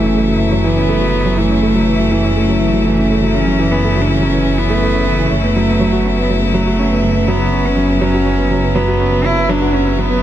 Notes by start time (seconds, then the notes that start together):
Already playing: F#1 C#3 E3 F#3 A3 B3 C#4 E4
0.03 C#4
0.15 A3
0.28 F#3
0.40 E3
0.52 F#3
0.64 E3 B3
0.77 C#4
0.89 A3
1.01 F#3
1.13 E3
1.26 F#3
1.38 E3 A3
1.50 C#4
1.63 A3
1.75 F#3
1.87 E3
1.99 F#3
2.12 E3
2.24 C#4
2.36 A3
2.49 F#3
2.61 E3
2.73 F#3
2.86 E3
2.98 C#4
3.10 A3
3.23 F#3
3.35 E3 C#4
3.47 F#3
3.59 E3
3.71 B3 C#4
3.84 A3
3.96 F#3
4.01 D4
4.09 E3 C#4
4.20 F#3
4.33 E3
4.45 C#4
4.58 E3 B3
4.70 A3
4.82 A3
4.94 C#4
5.07 E3
5.19 E3
5.31 F#1 A3 C#4
5.43 B3
5.56 F#3
5.68 B3
5.80 F#3
5.93 F#4
6.05 C#4
6.17 B3
6.22 B3
6.30 F#3 A3
6.42 B3
6.54 F#3
6.66 F#4
6.79 C#4
6.91 B3
7.04 F#3
7.16 B3
7.28 F#3 B3
7.40 F#4
7.52 C#4
7.65 B3 C#4
7.77 F#3
7.89 B3
8.01 F#3 C#4
8.14 F#4
8.26 C#4
8.39 B3
8.51 F#3
8.63 B3
8.75 F#3 B3
8.88 F#4
9.00 C#4
9.12 B3
9.24 F#3 E4
9.37 B3
9.49 F#3 D4
9.62 F#4
9.74 C#4
9.86 B3
9.98 F#3 B3
10.11 B3